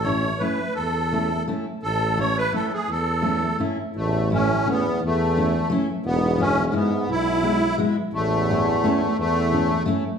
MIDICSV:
0, 0, Header, 1, 5, 480
1, 0, Start_track
1, 0, Key_signature, 3, "major"
1, 0, Tempo, 353774
1, 1062, Time_signature, 3, 2, 24, 8
1, 6805, Tempo, 346420
1, 13969, End_track
2, 0, Start_track
2, 0, Title_t, "Accordion"
2, 0, Program_c, 0, 21
2, 40, Note_on_c, 0, 73, 71
2, 528, Note_on_c, 0, 71, 54
2, 569, Note_off_c, 0, 73, 0
2, 1002, Note_off_c, 0, 71, 0
2, 1008, Note_on_c, 0, 69, 70
2, 1939, Note_off_c, 0, 69, 0
2, 2480, Note_on_c, 0, 69, 87
2, 2972, Note_off_c, 0, 69, 0
2, 2980, Note_on_c, 0, 73, 83
2, 3217, Note_off_c, 0, 73, 0
2, 3220, Note_on_c, 0, 71, 93
2, 3428, Note_off_c, 0, 71, 0
2, 3454, Note_on_c, 0, 69, 67
2, 3692, Note_off_c, 0, 69, 0
2, 3706, Note_on_c, 0, 68, 68
2, 3931, Note_off_c, 0, 68, 0
2, 3943, Note_on_c, 0, 69, 78
2, 4843, Note_off_c, 0, 69, 0
2, 5373, Note_on_c, 0, 57, 84
2, 5819, Note_off_c, 0, 57, 0
2, 5872, Note_on_c, 0, 61, 83
2, 6354, Note_off_c, 0, 61, 0
2, 6363, Note_on_c, 0, 59, 87
2, 6791, Note_off_c, 0, 59, 0
2, 6850, Note_on_c, 0, 57, 85
2, 7733, Note_off_c, 0, 57, 0
2, 8251, Note_on_c, 0, 59, 90
2, 8734, Note_on_c, 0, 61, 91
2, 8738, Note_off_c, 0, 59, 0
2, 9067, Note_off_c, 0, 61, 0
2, 9088, Note_on_c, 0, 61, 58
2, 9190, Note_off_c, 0, 61, 0
2, 9201, Note_on_c, 0, 59, 64
2, 9694, Note_off_c, 0, 59, 0
2, 9703, Note_on_c, 0, 64, 93
2, 10606, Note_off_c, 0, 64, 0
2, 11127, Note_on_c, 0, 57, 88
2, 12563, Note_off_c, 0, 57, 0
2, 12584, Note_on_c, 0, 57, 102
2, 13474, Note_off_c, 0, 57, 0
2, 13969, End_track
3, 0, Start_track
3, 0, Title_t, "Steel-string acoustic guitar"
3, 0, Program_c, 1, 25
3, 61, Note_on_c, 1, 57, 46
3, 72, Note_on_c, 1, 61, 41
3, 83, Note_on_c, 1, 64, 56
3, 297, Note_off_c, 1, 57, 0
3, 303, Note_off_c, 1, 61, 0
3, 309, Note_off_c, 1, 64, 0
3, 548, Note_on_c, 1, 57, 42
3, 557, Note_on_c, 1, 61, 42
3, 571, Note_on_c, 1, 64, 56
3, 786, Note_off_c, 1, 57, 0
3, 790, Note_off_c, 1, 61, 0
3, 797, Note_off_c, 1, 64, 0
3, 1521, Note_on_c, 1, 57, 54
3, 1531, Note_on_c, 1, 61, 39
3, 1541, Note_on_c, 1, 64, 55
3, 1749, Note_off_c, 1, 57, 0
3, 1755, Note_off_c, 1, 61, 0
3, 1760, Note_off_c, 1, 64, 0
3, 2000, Note_on_c, 1, 57, 56
3, 2008, Note_on_c, 1, 61, 49
3, 2020, Note_on_c, 1, 64, 75
3, 2229, Note_off_c, 1, 57, 0
3, 2233, Note_off_c, 1, 61, 0
3, 2239, Note_off_c, 1, 64, 0
3, 2950, Note_on_c, 1, 57, 61
3, 2961, Note_on_c, 1, 61, 50
3, 2969, Note_on_c, 1, 64, 51
3, 3172, Note_off_c, 1, 57, 0
3, 3177, Note_off_c, 1, 61, 0
3, 3181, Note_off_c, 1, 64, 0
3, 3426, Note_on_c, 1, 57, 53
3, 3442, Note_on_c, 1, 61, 50
3, 3447, Note_on_c, 1, 64, 54
3, 3647, Note_off_c, 1, 57, 0
3, 3655, Note_off_c, 1, 61, 0
3, 3658, Note_off_c, 1, 64, 0
3, 4368, Note_on_c, 1, 57, 53
3, 4376, Note_on_c, 1, 61, 50
3, 4389, Note_on_c, 1, 64, 54
3, 4601, Note_off_c, 1, 57, 0
3, 4605, Note_off_c, 1, 61, 0
3, 4612, Note_off_c, 1, 64, 0
3, 4865, Note_on_c, 1, 57, 57
3, 4878, Note_on_c, 1, 61, 55
3, 4890, Note_on_c, 1, 64, 70
3, 5098, Note_off_c, 1, 57, 0
3, 5105, Note_off_c, 1, 61, 0
3, 5111, Note_off_c, 1, 64, 0
3, 5835, Note_on_c, 1, 57, 66
3, 5846, Note_on_c, 1, 61, 49
3, 5859, Note_on_c, 1, 64, 65
3, 6062, Note_off_c, 1, 57, 0
3, 6067, Note_off_c, 1, 61, 0
3, 6074, Note_off_c, 1, 64, 0
3, 6321, Note_on_c, 1, 57, 52
3, 6332, Note_on_c, 1, 61, 57
3, 6342, Note_on_c, 1, 64, 62
3, 6543, Note_off_c, 1, 57, 0
3, 6549, Note_off_c, 1, 61, 0
3, 6554, Note_off_c, 1, 64, 0
3, 7293, Note_on_c, 1, 57, 58
3, 7299, Note_on_c, 1, 61, 53
3, 7310, Note_on_c, 1, 64, 65
3, 7509, Note_off_c, 1, 57, 0
3, 7512, Note_off_c, 1, 61, 0
3, 7518, Note_off_c, 1, 64, 0
3, 7749, Note_on_c, 1, 57, 74
3, 7771, Note_on_c, 1, 61, 69
3, 7779, Note_on_c, 1, 64, 79
3, 7976, Note_off_c, 1, 57, 0
3, 7987, Note_off_c, 1, 61, 0
3, 7991, Note_off_c, 1, 64, 0
3, 8700, Note_on_c, 1, 56, 59
3, 8714, Note_on_c, 1, 59, 48
3, 8725, Note_on_c, 1, 64, 65
3, 8929, Note_off_c, 1, 56, 0
3, 8936, Note_off_c, 1, 59, 0
3, 8941, Note_off_c, 1, 64, 0
3, 9167, Note_on_c, 1, 56, 58
3, 9180, Note_on_c, 1, 59, 50
3, 9194, Note_on_c, 1, 64, 67
3, 9402, Note_off_c, 1, 56, 0
3, 9409, Note_off_c, 1, 59, 0
3, 9416, Note_off_c, 1, 64, 0
3, 10146, Note_on_c, 1, 56, 56
3, 10155, Note_on_c, 1, 59, 52
3, 10166, Note_on_c, 1, 64, 67
3, 10375, Note_off_c, 1, 56, 0
3, 10379, Note_off_c, 1, 59, 0
3, 10385, Note_off_c, 1, 64, 0
3, 10635, Note_on_c, 1, 56, 77
3, 10646, Note_on_c, 1, 59, 61
3, 10656, Note_on_c, 1, 64, 77
3, 10867, Note_off_c, 1, 56, 0
3, 10873, Note_off_c, 1, 59, 0
3, 10878, Note_off_c, 1, 64, 0
3, 11618, Note_on_c, 1, 57, 51
3, 11634, Note_on_c, 1, 61, 44
3, 11647, Note_on_c, 1, 64, 74
3, 11843, Note_off_c, 1, 57, 0
3, 11851, Note_off_c, 1, 61, 0
3, 11857, Note_off_c, 1, 64, 0
3, 12099, Note_on_c, 1, 57, 74
3, 12118, Note_on_c, 1, 61, 68
3, 12126, Note_on_c, 1, 64, 77
3, 12323, Note_off_c, 1, 57, 0
3, 12333, Note_off_c, 1, 61, 0
3, 12337, Note_off_c, 1, 64, 0
3, 13050, Note_on_c, 1, 57, 53
3, 13060, Note_on_c, 1, 61, 61
3, 13072, Note_on_c, 1, 64, 63
3, 13270, Note_off_c, 1, 57, 0
3, 13275, Note_off_c, 1, 61, 0
3, 13281, Note_off_c, 1, 64, 0
3, 13513, Note_on_c, 1, 57, 74
3, 13526, Note_on_c, 1, 61, 60
3, 13543, Note_on_c, 1, 64, 75
3, 13739, Note_off_c, 1, 57, 0
3, 13745, Note_off_c, 1, 61, 0
3, 13754, Note_off_c, 1, 64, 0
3, 13969, End_track
4, 0, Start_track
4, 0, Title_t, "Euphonium"
4, 0, Program_c, 2, 58
4, 5394, Note_on_c, 2, 40, 67
4, 5830, Note_off_c, 2, 40, 0
4, 5908, Note_on_c, 2, 45, 81
4, 6326, Note_off_c, 2, 45, 0
4, 6372, Note_on_c, 2, 40, 68
4, 6796, Note_off_c, 2, 40, 0
4, 6869, Note_on_c, 2, 40, 70
4, 7742, Note_off_c, 2, 40, 0
4, 8259, Note_on_c, 2, 44, 81
4, 8695, Note_off_c, 2, 44, 0
4, 8751, Note_on_c, 2, 44, 71
4, 9096, Note_off_c, 2, 44, 0
4, 9107, Note_on_c, 2, 45, 50
4, 9193, Note_off_c, 2, 45, 0
4, 9230, Note_on_c, 2, 44, 74
4, 9662, Note_off_c, 2, 44, 0
4, 9699, Note_on_c, 2, 47, 75
4, 10604, Note_off_c, 2, 47, 0
4, 11121, Note_on_c, 2, 40, 96
4, 12524, Note_off_c, 2, 40, 0
4, 12557, Note_on_c, 2, 40, 77
4, 13461, Note_off_c, 2, 40, 0
4, 13969, End_track
5, 0, Start_track
5, 0, Title_t, "Tuba"
5, 0, Program_c, 3, 58
5, 0, Note_on_c, 3, 33, 78
5, 545, Note_off_c, 3, 33, 0
5, 1046, Note_on_c, 3, 40, 74
5, 1983, Note_off_c, 3, 40, 0
5, 2487, Note_on_c, 3, 33, 89
5, 3408, Note_off_c, 3, 33, 0
5, 3918, Note_on_c, 3, 40, 81
5, 4865, Note_off_c, 3, 40, 0
5, 5374, Note_on_c, 3, 33, 95
5, 6306, Note_off_c, 3, 33, 0
5, 6806, Note_on_c, 3, 40, 93
5, 7740, Note_off_c, 3, 40, 0
5, 8235, Note_on_c, 3, 28, 108
5, 9171, Note_off_c, 3, 28, 0
5, 9667, Note_on_c, 3, 35, 82
5, 10619, Note_off_c, 3, 35, 0
5, 11120, Note_on_c, 3, 33, 89
5, 12068, Note_off_c, 3, 33, 0
5, 12583, Note_on_c, 3, 40, 76
5, 13506, Note_off_c, 3, 40, 0
5, 13969, End_track
0, 0, End_of_file